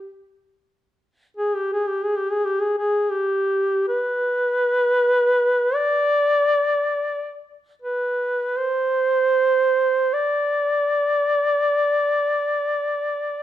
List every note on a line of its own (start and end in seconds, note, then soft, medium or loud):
0.00 0.13 G4 medium
1.37 1.57 G#4 medium
1.56 1.72 G4 medium
1.73 1.90 G#4 medium
1.89 2.05 G4 medium
2.04 2.18 G#4 medium
2.17 2.33 G4 medium
2.32 2.47 G#4 medium
2.45 2.62 G4 medium
2.60 2.78 G#4 medium
2.78 3.12 G#4 medium
3.11 3.88 G4 medium
3.89 5.76 B4 medium
5.75 7.47 D5 medium
7.82 8.59 B4 medium
8.57 10.15 C5 medium
10.13 13.43 D5 medium